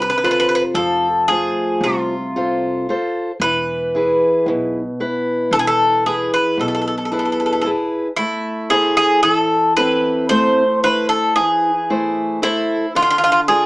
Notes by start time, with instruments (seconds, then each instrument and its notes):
Already playing: steel-string acoustic guitar C3
0.02 bouzouki B4
0.10 bouzouki B4
0.18 bouzouki B4
0.24 steel-string acoustic guitar F4 A4 C5, bouzouki B4
0.31 bouzouki B4
0.40 bouzouki B4
0.49 bouzouki B4
0.55 bouzouki B4
0.74 upright bass F1, steel-string acoustic guitar F3, bouzouki A4
1.28 steel-string acoustic guitar A3 F4 C5, bouzouki G#4
1.81 upright bass C2, steel-string acoustic guitar C3, bouzouki F4
2.36 steel-string acoustic guitar F4 A4 C5
2.89 steel-string acoustic guitar F4 A4 C5
3.40 upright bass E1, steel-string acoustic guitar E3, bouzouki B4
3.95 steel-string acoustic guitar E4 G#4 B4
4.46 upright bass B1, steel-string acoustic guitar B2
5.00 steel-string acoustic guitar E4 B4
5.51 upright bass E1, steel-string acoustic guitar E3, bouzouki A4
5.59 bouzouki G#4
5.67 bouzouki A4
6.06 steel-string acoustic guitar E4 G#4 B4, bouzouki G#4
6.34 bouzouki B4
6.57 upright bass B1, steel-string acoustic guitar B2, bouzouki A4
6.68 bouzouki A4
6.75 bouzouki A4
6.82 bouzouki A4
6.88 bouzouki A4
6.98 bouzouki A4
7.05 bouzouki A4
7.12 steel-string acoustic guitar E4 G#4 B4, bouzouki A4
7.19 bouzouki A4
7.25 bouzouki A4
7.32 bouzouki A4
7.40 bouzouki A4
7.46 bouzouki A4
7.53 bouzouki A4
7.62 steel-string acoustic guitar E4 G#4, bouzouki A4
7.66 steel-string acoustic guitar B4
8.16 steel-string acoustic guitar A3, bouzouki E4
8.70 steel-string acoustic guitar E4 A4 C5, bouzouki G#4
8.97 bouzouki G#4
9.23 steel-string acoustic guitar E3, bouzouki A4
9.77 steel-string acoustic guitar C4 E4 A4, bouzouki B4
10.29 steel-string acoustic guitar A3, bouzouki C5
10.83 steel-string acoustic guitar E4 C5, bouzouki B4
11.09 bouzouki A4
11.36 steel-string acoustic guitar E3, bouzouki G#4
11.90 steel-string acoustic guitar A3 E4 C5
12.42 steel-string acoustic guitar E4 A4 C5, bouzouki E4
12.95 steel-string acoustic guitar D3, bouzouki F4
13.02 bouzouki F4
13.10 bouzouki F4
13.18 bouzouki F4
13.24 bouzouki F4
13.32 bouzouki F4
13.48 steel-string acoustic guitar D4 F4 A4, bouzouki G#4